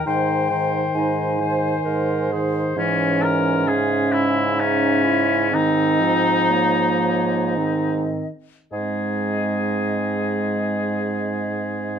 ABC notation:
X:1
M:3/4
L:1/8
Q:1/4=63
K:Ab
V:1 name="Flute"
g2 a3 z | d2 _f2 f2 | e2 d d e z | e6 |]
V:2 name="Oboe"
c c2 c2 c | D B A _F D2 | E4- E z | A6 |]
V:3 name="Clarinet"
E E E c B A | D4 E _F | C2 B,2 C z | C6 |]
V:4 name="French horn" clef=bass
E, E,2 E,2 E, | _F,2 D,4 | E, F,3 E, z | A,6 |]
V:5 name="Bassoon" clef=bass
A,,2 A,,2 A,,2 | A,,6- | A,,4- A,, z | A,,6 |]